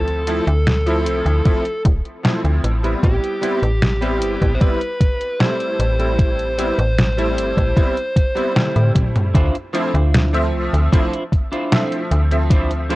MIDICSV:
0, 0, Header, 1, 6, 480
1, 0, Start_track
1, 0, Tempo, 789474
1, 1845, Time_signature, 4, 2, 24, 8
1, 7877, End_track
2, 0, Start_track
2, 0, Title_t, "Lead electric guitar"
2, 0, Program_c, 0, 29
2, 0, Note_on_c, 0, 69, 90
2, 1104, Note_off_c, 0, 69, 0
2, 1851, Note_on_c, 0, 67, 89
2, 2765, Note_on_c, 0, 72, 78
2, 2793, Note_off_c, 0, 67, 0
2, 2806, Note_off_c, 0, 72, 0
2, 2808, Note_on_c, 0, 71, 106
2, 3286, Note_off_c, 0, 71, 0
2, 3288, Note_on_c, 0, 72, 109
2, 3760, Note_off_c, 0, 72, 0
2, 3768, Note_on_c, 0, 72, 99
2, 5422, Note_off_c, 0, 72, 0
2, 7877, End_track
3, 0, Start_track
3, 0, Title_t, "Clean electric guitar"
3, 0, Program_c, 1, 27
3, 5682, Note_on_c, 1, 62, 121
3, 5687, Note_on_c, 1, 64, 95
3, 5687, Note_on_c, 1, 65, 106
3, 5690, Note_on_c, 1, 72, 127
3, 5805, Note_off_c, 1, 62, 0
3, 5806, Note_off_c, 1, 64, 0
3, 5808, Note_off_c, 1, 65, 0
3, 5809, Note_off_c, 1, 72, 0
3, 5921, Note_on_c, 1, 62, 91
3, 5925, Note_on_c, 1, 65, 84
3, 5927, Note_on_c, 1, 64, 75
3, 5930, Note_on_c, 1, 72, 98
3, 6284, Note_off_c, 1, 62, 0
3, 6286, Note_off_c, 1, 64, 0
3, 6287, Note_off_c, 1, 65, 0
3, 6289, Note_off_c, 1, 72, 0
3, 6640, Note_on_c, 1, 62, 92
3, 6643, Note_on_c, 1, 64, 88
3, 6646, Note_on_c, 1, 65, 81
3, 6651, Note_on_c, 1, 72, 98
3, 6823, Note_off_c, 1, 62, 0
3, 6825, Note_off_c, 1, 64, 0
3, 6826, Note_off_c, 1, 65, 0
3, 6828, Note_off_c, 1, 72, 0
3, 7001, Note_on_c, 1, 62, 93
3, 7005, Note_on_c, 1, 64, 85
3, 7006, Note_on_c, 1, 65, 89
3, 7012, Note_on_c, 1, 72, 97
3, 7303, Note_off_c, 1, 62, 0
3, 7305, Note_off_c, 1, 64, 0
3, 7306, Note_off_c, 1, 65, 0
3, 7308, Note_off_c, 1, 72, 0
3, 7602, Note_on_c, 1, 62, 118
3, 7605, Note_on_c, 1, 64, 108
3, 7608, Note_on_c, 1, 65, 108
3, 7611, Note_on_c, 1, 72, 127
3, 7725, Note_off_c, 1, 62, 0
3, 7726, Note_off_c, 1, 64, 0
3, 7728, Note_off_c, 1, 65, 0
3, 7729, Note_off_c, 1, 72, 0
3, 7841, Note_on_c, 1, 62, 96
3, 7845, Note_on_c, 1, 64, 66
3, 7847, Note_on_c, 1, 65, 86
3, 7851, Note_on_c, 1, 72, 101
3, 7877, Note_off_c, 1, 62, 0
3, 7877, Note_off_c, 1, 64, 0
3, 7877, Note_off_c, 1, 65, 0
3, 7877, Note_off_c, 1, 72, 0
3, 7877, End_track
4, 0, Start_track
4, 0, Title_t, "Electric grand piano"
4, 0, Program_c, 2, 2
4, 0, Note_on_c, 2, 53, 74
4, 0, Note_on_c, 2, 57, 69
4, 0, Note_on_c, 2, 60, 71
4, 0, Note_on_c, 2, 64, 84
4, 134, Note_off_c, 2, 53, 0
4, 136, Note_off_c, 2, 57, 0
4, 138, Note_off_c, 2, 60, 0
4, 139, Note_off_c, 2, 64, 0
4, 162, Note_on_c, 2, 53, 94
4, 165, Note_on_c, 2, 57, 87
4, 168, Note_on_c, 2, 60, 85
4, 172, Note_on_c, 2, 64, 100
4, 265, Note_off_c, 2, 53, 0
4, 266, Note_off_c, 2, 57, 0
4, 268, Note_off_c, 2, 60, 0
4, 270, Note_off_c, 2, 64, 0
4, 523, Note_on_c, 2, 53, 96
4, 527, Note_on_c, 2, 57, 89
4, 529, Note_on_c, 2, 60, 86
4, 533, Note_on_c, 2, 64, 107
4, 855, Note_off_c, 2, 53, 0
4, 857, Note_off_c, 2, 57, 0
4, 858, Note_off_c, 2, 60, 0
4, 860, Note_off_c, 2, 64, 0
4, 880, Note_on_c, 2, 53, 91
4, 883, Note_on_c, 2, 57, 82
4, 885, Note_on_c, 2, 60, 84
4, 888, Note_on_c, 2, 64, 101
4, 984, Note_off_c, 2, 53, 0
4, 985, Note_off_c, 2, 57, 0
4, 986, Note_off_c, 2, 60, 0
4, 988, Note_off_c, 2, 64, 0
4, 1357, Note_on_c, 2, 53, 79
4, 1361, Note_on_c, 2, 57, 72
4, 1365, Note_on_c, 2, 60, 71
4, 1366, Note_on_c, 2, 64, 88
4, 1693, Note_off_c, 2, 53, 0
4, 1695, Note_off_c, 2, 57, 0
4, 1697, Note_off_c, 2, 60, 0
4, 1698, Note_off_c, 2, 64, 0
4, 1721, Note_on_c, 2, 55, 79
4, 1722, Note_on_c, 2, 59, 69
4, 1726, Note_on_c, 2, 60, 68
4, 1729, Note_on_c, 2, 64, 85
4, 2054, Note_off_c, 2, 55, 0
4, 2055, Note_off_c, 2, 59, 0
4, 2056, Note_off_c, 2, 60, 0
4, 2058, Note_off_c, 2, 64, 0
4, 2075, Note_on_c, 2, 55, 93
4, 2079, Note_on_c, 2, 59, 84
4, 2083, Note_on_c, 2, 60, 88
4, 2084, Note_on_c, 2, 64, 108
4, 2181, Note_off_c, 2, 55, 0
4, 2183, Note_off_c, 2, 59, 0
4, 2185, Note_off_c, 2, 60, 0
4, 2186, Note_off_c, 2, 64, 0
4, 2437, Note_on_c, 2, 55, 97
4, 2440, Note_on_c, 2, 59, 84
4, 2443, Note_on_c, 2, 60, 90
4, 2446, Note_on_c, 2, 64, 102
4, 2772, Note_off_c, 2, 55, 0
4, 2773, Note_off_c, 2, 59, 0
4, 2775, Note_off_c, 2, 60, 0
4, 2776, Note_off_c, 2, 64, 0
4, 2797, Note_on_c, 2, 55, 91
4, 2802, Note_on_c, 2, 59, 82
4, 2804, Note_on_c, 2, 60, 85
4, 2806, Note_on_c, 2, 64, 100
4, 2902, Note_off_c, 2, 55, 0
4, 2905, Note_off_c, 2, 59, 0
4, 2906, Note_off_c, 2, 60, 0
4, 2907, Note_off_c, 2, 64, 0
4, 3278, Note_on_c, 2, 55, 80
4, 3281, Note_on_c, 2, 57, 75
4, 3283, Note_on_c, 2, 60, 74
4, 3287, Note_on_c, 2, 64, 88
4, 3614, Note_off_c, 2, 55, 0
4, 3615, Note_off_c, 2, 57, 0
4, 3616, Note_off_c, 2, 60, 0
4, 3618, Note_off_c, 2, 64, 0
4, 3640, Note_on_c, 2, 55, 76
4, 3643, Note_on_c, 2, 57, 70
4, 3644, Note_on_c, 2, 60, 69
4, 3647, Note_on_c, 2, 64, 87
4, 3974, Note_off_c, 2, 55, 0
4, 3975, Note_off_c, 2, 57, 0
4, 3976, Note_off_c, 2, 60, 0
4, 3977, Note_off_c, 2, 64, 0
4, 4000, Note_on_c, 2, 55, 94
4, 4003, Note_on_c, 2, 59, 84
4, 4004, Note_on_c, 2, 60, 85
4, 4008, Note_on_c, 2, 64, 107
4, 4104, Note_off_c, 2, 55, 0
4, 4105, Note_off_c, 2, 59, 0
4, 4106, Note_off_c, 2, 60, 0
4, 4108, Note_off_c, 2, 64, 0
4, 4360, Note_on_c, 2, 55, 95
4, 4363, Note_on_c, 2, 57, 86
4, 4365, Note_on_c, 2, 60, 86
4, 4369, Note_on_c, 2, 64, 104
4, 4693, Note_off_c, 2, 55, 0
4, 4695, Note_off_c, 2, 57, 0
4, 4696, Note_off_c, 2, 60, 0
4, 4698, Note_off_c, 2, 64, 0
4, 4716, Note_on_c, 2, 55, 95
4, 4719, Note_on_c, 2, 59, 88
4, 4722, Note_on_c, 2, 60, 88
4, 4725, Note_on_c, 2, 64, 105
4, 4822, Note_off_c, 2, 55, 0
4, 4823, Note_off_c, 2, 59, 0
4, 4825, Note_off_c, 2, 60, 0
4, 4826, Note_off_c, 2, 64, 0
4, 5077, Note_on_c, 2, 55, 92
4, 5080, Note_on_c, 2, 59, 85
4, 5084, Note_on_c, 2, 60, 85
4, 5086, Note_on_c, 2, 64, 99
4, 5172, Note_off_c, 2, 55, 0
4, 5173, Note_off_c, 2, 59, 0
4, 5175, Note_off_c, 2, 60, 0
4, 5177, Note_off_c, 2, 64, 0
4, 5196, Note_on_c, 2, 55, 74
4, 5201, Note_on_c, 2, 57, 68
4, 5203, Note_on_c, 2, 60, 66
4, 5207, Note_on_c, 2, 64, 81
4, 5666, Note_off_c, 2, 55, 0
4, 5669, Note_off_c, 2, 57, 0
4, 5670, Note_off_c, 2, 60, 0
4, 5672, Note_off_c, 2, 64, 0
4, 5916, Note_on_c, 2, 53, 96
4, 5918, Note_on_c, 2, 57, 88
4, 5921, Note_on_c, 2, 60, 90
4, 5926, Note_on_c, 2, 64, 106
4, 6022, Note_off_c, 2, 53, 0
4, 6023, Note_off_c, 2, 57, 0
4, 6024, Note_off_c, 2, 60, 0
4, 6027, Note_off_c, 2, 64, 0
4, 6280, Note_on_c, 2, 53, 99
4, 6283, Note_on_c, 2, 57, 89
4, 6285, Note_on_c, 2, 60, 90
4, 6289, Note_on_c, 2, 76, 108
4, 6614, Note_off_c, 2, 53, 0
4, 6615, Note_off_c, 2, 57, 0
4, 6616, Note_off_c, 2, 60, 0
4, 6618, Note_off_c, 2, 76, 0
4, 6640, Note_on_c, 2, 53, 92
4, 6645, Note_on_c, 2, 57, 85
4, 6647, Note_on_c, 2, 60, 84
4, 6649, Note_on_c, 2, 64, 101
4, 6744, Note_off_c, 2, 53, 0
4, 6746, Note_off_c, 2, 57, 0
4, 6747, Note_off_c, 2, 60, 0
4, 6748, Note_off_c, 2, 64, 0
4, 7123, Note_on_c, 2, 53, 82
4, 7126, Note_on_c, 2, 57, 73
4, 7129, Note_on_c, 2, 60, 76
4, 7131, Note_on_c, 2, 76, 91
4, 7456, Note_off_c, 2, 53, 0
4, 7458, Note_off_c, 2, 57, 0
4, 7459, Note_off_c, 2, 60, 0
4, 7460, Note_off_c, 2, 76, 0
4, 7483, Note_on_c, 2, 53, 81
4, 7488, Note_on_c, 2, 57, 71
4, 7489, Note_on_c, 2, 60, 71
4, 7492, Note_on_c, 2, 76, 84
4, 7815, Note_off_c, 2, 53, 0
4, 7817, Note_off_c, 2, 57, 0
4, 7818, Note_off_c, 2, 60, 0
4, 7820, Note_off_c, 2, 76, 0
4, 7843, Note_on_c, 2, 53, 97
4, 7847, Note_on_c, 2, 57, 85
4, 7850, Note_on_c, 2, 60, 85
4, 7853, Note_on_c, 2, 64, 104
4, 7877, Note_off_c, 2, 53, 0
4, 7877, Note_off_c, 2, 57, 0
4, 7877, Note_off_c, 2, 60, 0
4, 7877, Note_off_c, 2, 64, 0
4, 7877, End_track
5, 0, Start_track
5, 0, Title_t, "FM bass"
5, 0, Program_c, 3, 39
5, 0, Note_on_c, 3, 38, 87
5, 248, Note_off_c, 3, 38, 0
5, 286, Note_on_c, 3, 38, 97
5, 646, Note_on_c, 3, 36, 81
5, 655, Note_off_c, 3, 38, 0
5, 743, Note_off_c, 3, 36, 0
5, 763, Note_on_c, 3, 38, 87
5, 860, Note_off_c, 3, 38, 0
5, 1124, Note_on_c, 3, 26, 101
5, 1222, Note_off_c, 3, 26, 0
5, 1485, Note_on_c, 3, 38, 86
5, 1581, Note_off_c, 3, 38, 0
5, 1604, Note_on_c, 3, 33, 82
5, 1798, Note_off_c, 3, 33, 0
5, 1843, Note_on_c, 3, 33, 102
5, 1942, Note_off_c, 3, 33, 0
5, 2204, Note_on_c, 3, 33, 97
5, 2561, Note_on_c, 3, 31, 80
5, 2570, Note_off_c, 3, 33, 0
5, 2661, Note_off_c, 3, 31, 0
5, 2685, Note_on_c, 3, 33, 89
5, 2781, Note_off_c, 3, 33, 0
5, 3523, Note_on_c, 3, 33, 87
5, 4087, Note_off_c, 3, 33, 0
5, 4125, Note_on_c, 3, 33, 100
5, 4483, Note_on_c, 3, 31, 79
5, 4492, Note_off_c, 3, 33, 0
5, 4582, Note_off_c, 3, 31, 0
5, 4603, Note_on_c, 3, 33, 87
5, 4700, Note_off_c, 3, 33, 0
5, 5326, Note_on_c, 3, 45, 78
5, 5422, Note_off_c, 3, 45, 0
5, 5683, Note_on_c, 3, 38, 99
5, 5781, Note_off_c, 3, 38, 0
5, 6045, Note_on_c, 3, 38, 100
5, 6404, Note_on_c, 3, 36, 79
5, 6413, Note_off_c, 3, 38, 0
5, 6502, Note_off_c, 3, 36, 0
5, 6526, Note_on_c, 3, 38, 89
5, 6622, Note_off_c, 3, 38, 0
5, 7364, Note_on_c, 3, 38, 89
5, 7877, Note_off_c, 3, 38, 0
5, 7877, End_track
6, 0, Start_track
6, 0, Title_t, "Drums"
6, 46, Note_on_c, 9, 42, 36
6, 107, Note_off_c, 9, 42, 0
6, 165, Note_on_c, 9, 42, 86
6, 225, Note_off_c, 9, 42, 0
6, 287, Note_on_c, 9, 42, 37
6, 348, Note_off_c, 9, 42, 0
6, 406, Note_on_c, 9, 38, 111
6, 406, Note_on_c, 9, 42, 63
6, 467, Note_off_c, 9, 38, 0
6, 467, Note_off_c, 9, 42, 0
6, 526, Note_on_c, 9, 42, 38
6, 587, Note_off_c, 9, 42, 0
6, 646, Note_on_c, 9, 42, 86
6, 707, Note_off_c, 9, 42, 0
6, 766, Note_on_c, 9, 42, 39
6, 827, Note_off_c, 9, 42, 0
6, 884, Note_on_c, 9, 42, 61
6, 885, Note_on_c, 9, 36, 110
6, 944, Note_off_c, 9, 42, 0
6, 946, Note_off_c, 9, 36, 0
6, 1004, Note_on_c, 9, 42, 37
6, 1065, Note_off_c, 9, 42, 0
6, 1124, Note_on_c, 9, 36, 101
6, 1125, Note_on_c, 9, 42, 88
6, 1185, Note_off_c, 9, 36, 0
6, 1186, Note_off_c, 9, 42, 0
6, 1247, Note_on_c, 9, 42, 38
6, 1308, Note_off_c, 9, 42, 0
6, 1366, Note_on_c, 9, 38, 109
6, 1366, Note_on_c, 9, 42, 63
6, 1427, Note_off_c, 9, 38, 0
6, 1427, Note_off_c, 9, 42, 0
6, 1487, Note_on_c, 9, 42, 37
6, 1548, Note_off_c, 9, 42, 0
6, 1606, Note_on_c, 9, 42, 85
6, 1667, Note_off_c, 9, 42, 0
6, 1728, Note_on_c, 9, 42, 36
6, 1789, Note_off_c, 9, 42, 0
6, 1844, Note_on_c, 9, 36, 108
6, 1846, Note_on_c, 9, 42, 64
6, 1905, Note_off_c, 9, 36, 0
6, 1907, Note_off_c, 9, 42, 0
6, 1969, Note_on_c, 9, 42, 38
6, 2029, Note_off_c, 9, 42, 0
6, 2085, Note_on_c, 9, 42, 87
6, 2146, Note_off_c, 9, 42, 0
6, 2206, Note_on_c, 9, 42, 38
6, 2267, Note_off_c, 9, 42, 0
6, 2324, Note_on_c, 9, 38, 111
6, 2324, Note_on_c, 9, 42, 63
6, 2384, Note_off_c, 9, 38, 0
6, 2384, Note_off_c, 9, 42, 0
6, 2445, Note_on_c, 9, 42, 38
6, 2506, Note_off_c, 9, 42, 0
6, 2564, Note_on_c, 9, 42, 90
6, 2625, Note_off_c, 9, 42, 0
6, 2686, Note_on_c, 9, 36, 59
6, 2686, Note_on_c, 9, 42, 38
6, 2747, Note_off_c, 9, 36, 0
6, 2747, Note_off_c, 9, 42, 0
6, 2804, Note_on_c, 9, 36, 111
6, 2804, Note_on_c, 9, 42, 64
6, 2865, Note_off_c, 9, 36, 0
6, 2865, Note_off_c, 9, 42, 0
6, 2926, Note_on_c, 9, 42, 38
6, 2987, Note_off_c, 9, 42, 0
6, 3044, Note_on_c, 9, 36, 97
6, 3045, Note_on_c, 9, 42, 87
6, 3105, Note_off_c, 9, 36, 0
6, 3106, Note_off_c, 9, 42, 0
6, 3167, Note_on_c, 9, 42, 37
6, 3228, Note_off_c, 9, 42, 0
6, 3285, Note_on_c, 9, 38, 107
6, 3285, Note_on_c, 9, 42, 63
6, 3345, Note_off_c, 9, 38, 0
6, 3345, Note_off_c, 9, 42, 0
6, 3406, Note_on_c, 9, 42, 36
6, 3467, Note_off_c, 9, 42, 0
6, 3525, Note_on_c, 9, 42, 89
6, 3586, Note_off_c, 9, 42, 0
6, 3646, Note_on_c, 9, 42, 38
6, 3707, Note_off_c, 9, 42, 0
6, 3763, Note_on_c, 9, 36, 114
6, 3765, Note_on_c, 9, 42, 68
6, 3824, Note_off_c, 9, 36, 0
6, 3826, Note_off_c, 9, 42, 0
6, 3887, Note_on_c, 9, 42, 37
6, 3947, Note_off_c, 9, 42, 0
6, 4005, Note_on_c, 9, 42, 98
6, 4066, Note_off_c, 9, 42, 0
6, 4127, Note_on_c, 9, 42, 40
6, 4188, Note_off_c, 9, 42, 0
6, 4246, Note_on_c, 9, 38, 111
6, 4246, Note_on_c, 9, 42, 67
6, 4307, Note_off_c, 9, 38, 0
6, 4307, Note_off_c, 9, 42, 0
6, 4367, Note_on_c, 9, 42, 41
6, 4428, Note_off_c, 9, 42, 0
6, 4487, Note_on_c, 9, 42, 92
6, 4548, Note_off_c, 9, 42, 0
6, 4604, Note_on_c, 9, 36, 61
6, 4608, Note_on_c, 9, 42, 39
6, 4665, Note_off_c, 9, 36, 0
6, 4668, Note_off_c, 9, 42, 0
6, 4722, Note_on_c, 9, 36, 115
6, 4725, Note_on_c, 9, 42, 67
6, 4783, Note_off_c, 9, 36, 0
6, 4786, Note_off_c, 9, 42, 0
6, 4847, Note_on_c, 9, 42, 39
6, 4908, Note_off_c, 9, 42, 0
6, 4963, Note_on_c, 9, 36, 100
6, 4965, Note_on_c, 9, 42, 92
6, 5023, Note_off_c, 9, 36, 0
6, 5026, Note_off_c, 9, 42, 0
6, 5087, Note_on_c, 9, 42, 40
6, 5148, Note_off_c, 9, 42, 0
6, 5206, Note_on_c, 9, 38, 112
6, 5206, Note_on_c, 9, 42, 65
6, 5206, Note_on_c, 9, 48, 60
6, 5266, Note_off_c, 9, 38, 0
6, 5266, Note_off_c, 9, 42, 0
6, 5266, Note_off_c, 9, 48, 0
6, 5326, Note_on_c, 9, 42, 41
6, 5326, Note_on_c, 9, 48, 62
6, 5386, Note_off_c, 9, 42, 0
6, 5386, Note_off_c, 9, 48, 0
6, 5443, Note_on_c, 9, 36, 61
6, 5446, Note_on_c, 9, 42, 95
6, 5446, Note_on_c, 9, 47, 83
6, 5504, Note_off_c, 9, 36, 0
6, 5507, Note_off_c, 9, 42, 0
6, 5507, Note_off_c, 9, 47, 0
6, 5567, Note_on_c, 9, 42, 40
6, 5567, Note_on_c, 9, 45, 82
6, 5628, Note_off_c, 9, 42, 0
6, 5628, Note_off_c, 9, 45, 0
6, 5683, Note_on_c, 9, 36, 118
6, 5685, Note_on_c, 9, 42, 102
6, 5744, Note_off_c, 9, 36, 0
6, 5746, Note_off_c, 9, 42, 0
6, 5808, Note_on_c, 9, 42, 40
6, 5868, Note_off_c, 9, 42, 0
6, 5926, Note_on_c, 9, 42, 73
6, 5987, Note_off_c, 9, 42, 0
6, 6048, Note_on_c, 9, 42, 41
6, 6109, Note_off_c, 9, 42, 0
6, 6167, Note_on_c, 9, 38, 115
6, 6167, Note_on_c, 9, 42, 97
6, 6228, Note_off_c, 9, 38, 0
6, 6228, Note_off_c, 9, 42, 0
6, 6289, Note_on_c, 9, 42, 43
6, 6349, Note_off_c, 9, 42, 0
6, 6530, Note_on_c, 9, 42, 41
6, 6591, Note_off_c, 9, 42, 0
6, 6643, Note_on_c, 9, 36, 120
6, 6647, Note_on_c, 9, 42, 99
6, 6704, Note_off_c, 9, 36, 0
6, 6708, Note_off_c, 9, 42, 0
6, 6769, Note_on_c, 9, 42, 40
6, 6830, Note_off_c, 9, 42, 0
6, 6883, Note_on_c, 9, 36, 65
6, 6887, Note_on_c, 9, 42, 66
6, 6944, Note_off_c, 9, 36, 0
6, 6948, Note_off_c, 9, 42, 0
6, 7008, Note_on_c, 9, 42, 41
6, 7068, Note_off_c, 9, 42, 0
6, 7126, Note_on_c, 9, 38, 115
6, 7126, Note_on_c, 9, 42, 94
6, 7187, Note_off_c, 9, 38, 0
6, 7187, Note_off_c, 9, 42, 0
6, 7247, Note_on_c, 9, 42, 41
6, 7308, Note_off_c, 9, 42, 0
6, 7365, Note_on_c, 9, 42, 68
6, 7426, Note_off_c, 9, 42, 0
6, 7487, Note_on_c, 9, 42, 42
6, 7548, Note_off_c, 9, 42, 0
6, 7604, Note_on_c, 9, 36, 124
6, 7606, Note_on_c, 9, 42, 101
6, 7664, Note_off_c, 9, 36, 0
6, 7666, Note_off_c, 9, 42, 0
6, 7727, Note_on_c, 9, 42, 39
6, 7788, Note_off_c, 9, 42, 0
6, 7846, Note_on_c, 9, 42, 72
6, 7877, Note_off_c, 9, 42, 0
6, 7877, End_track
0, 0, End_of_file